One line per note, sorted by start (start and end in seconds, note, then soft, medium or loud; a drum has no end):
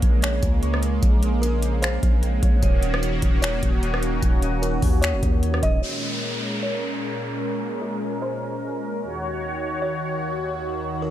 0.00 0.41 A#1 loud
0.00 2.59 C#3 loud
0.00 2.59 G#3 medium
0.00 1.02 A#3 medium
0.00 2.59 A#3 medium
0.00 0.22 C#4 medium
0.00 0.62 C#6 medium
0.00 kick loud
0.00 closed hi-hat medium
0.22 0.82 C#4 medium
0.22 0.99 C#5 medium
0.22 finger snap loud
0.22 closed hi-hat medium
0.43 1.00 C#2 loud
0.43 kick medium
0.43 closed hi-hat medium
0.63 1.89 C#6 loud
0.63 closed hi-hat medium
0.74 cross-stick medium
0.83 1.42 C#4 medium
0.83 closed hi-hat medium
1.02 1.99 A#1 loud
1.02 4.24 A#3 medium
1.02 kick loud
1.02 closed hi-hat medium
1.23 3.35 A#4 loud
1.23 closed hi-hat medium
1.42 2.03 C#4 medium
1.42 1.80 A#4 medium
1.42 closed hi-hat medium
1.62 3.09 C5 medium
1.62 closed hi-hat medium
1.82 2.20 C5 medium
1.82 3.49 F5 loud
1.82 finger snap loud
1.82 closed hi-hat medium
2.03 2.41 A#1 loud
2.03 3.03 C#4 medium
2.03 kick medium
2.03 closed hi-hat medium
2.23 3.09 C4 medium
2.23 closed hi-hat medium
2.42 2.62 A#1 loud
2.42 4.33 C#5 medium
2.42 kick medium
2.42 closed hi-hat medium
2.62 3.20 D#1 loud
2.62 5.79 D#3 medium
2.62 5.79 A#3 medium
2.62 5.79 C#4 medium
2.62 5.79 F#4 loud
2.62 3.83 D#5 loud
2.62 kick loud
2.62 closed hi-hat medium
2.82 3.42 D#4 medium
2.82 closed hi-hat medium
2.94 cross-stick loud
3.03 4.22 C#4 medium
3.03 closed hi-hat medium
3.22 3.61 D#1 loud
3.22 kick loud
3.22 closed hi-hat medium
3.42 4.18 C#5 medium
3.42 finger snap loud
3.42 closed hi-hat medium
3.63 4.20 D#1 loud
3.63 kick medium
3.63 closed hi-hat medium
3.83 4.42 D#5 loud
3.83 closed hi-hat medium
3.94 cross-stick medium
4.03 4.62 D#4 medium
4.03 closed hi-hat medium
4.22 4.80 D#1 loud
4.22 4.82 C#4 medium
4.22 kick loud
4.22 closed hi-hat medium
4.42 5.03 D#5 loud
4.42 closed hi-hat medium
4.62 5.22 D#4 medium
4.62 5.00 A#4 medium
4.62 closed hi-hat medium
4.82 5.14 D#2 loud
4.82 5.42 C#4 medium
4.82 kick loud
4.82 open hi-hat medium
5.02 5.58 C#5 medium
5.02 5.62 D#5 loud
5.02 finger snap loud
5.02 closed hi-hat medium
5.13 5.22 F1 loud
5.23 5.61 D#2 loud
5.23 7.93 D#4 medium
5.23 kick medium
5.23 closed hi-hat medium
5.43 8.32 C#4 medium
5.43 closed hi-hat medium
5.54 cross-stick medium
5.62 5.82 D#1 loud
5.62 7.41 D#5 medium
5.62 5.82 D#5 medium
5.62 kick medium
5.62 closed hi-hat medium
5.83 8.99 A#2 medium
5.83 8.99 G#3 medium
5.83 8.99 C#4 medium
5.83 8.99 A#4 loud
5.83 downlifter medium
6.63 7.39 C#5 medium
7.82 8.20 A#4 medium
8.22 8.60 C5 medium
9.02 11.10 D#2 medium
9.02 11.10 D#3 medium
9.02 11.10 F#4 medium
9.02 11.10 C#5 loud
9.82 10.58 C#5 medium
10.62 riser medium
11.02 11.10 A#4 medium